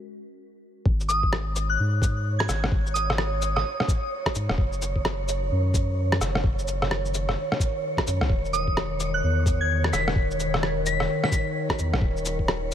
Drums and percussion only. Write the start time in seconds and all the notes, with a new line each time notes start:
0.86 kick
1.00 shaker
1.09 cabasa, shaker
1.23 kick
1.33 cross-stick
1.56 cabasa, shaker
2.02 kick, cabasa, shaker
2.40 cross-stick
2.49 cross-stick, cabasa, shaker
2.64 cross-stick
2.72 kick
2.87 shaker
2.96 cabasa, shaker
3.10 cross-stick
3.18 cross-stick
3.42 cabasa, shaker
3.57 cross-stick
3.80 cross-stick
3.88 kick, cabasa, shaker
4.26 kick, cross-stick
4.35 cabasa, shaker
4.49 cross-stick
4.58 kick
4.73 shaker
4.82 cabasa, shaker
4.96 kick
5.05 cross-stick
5.28 cabasa, shaker
5.74 kick, cabasa, shaker
6.12 cross-stick
6.21 cross-stick, cabasa, shaker
6.35 cross-stick
6.44 kick
6.59 shaker
6.68 cabasa, shaker
6.82 cross-stick
6.91 cross-stick
7.05 shaker
7.14 cabasa, shaker
7.29 cross-stick
7.52 cross-stick
7.60 kick, cabasa, shaker
7.97 kick, cross-stick
8.07 cabasa, shaker
8.21 cross-stick
8.30 kick
8.45 shaker
8.54 cabasa, shaker
8.67 kick
8.77 cross-stick
9.00 cabasa, shaker
9.46 kick, cabasa, shaker
9.84 cross-stick
9.93 cross-stick, cabasa, shaker
10.08 cross-stick
10.16 kick
10.31 shaker
10.40 cabasa, shaker
10.54 cross-stick
10.63 cross-stick
10.86 cabasa, shaker
11.00 cross-stick
11.24 cross-stick
11.32 kick, cabasa, shaker
11.69 kick, cross-stick
11.79 cabasa, shaker
11.94 cross-stick
12.02 kick
12.17 shaker
12.25 cabasa, shaker
12.39 kick
12.48 cross-stick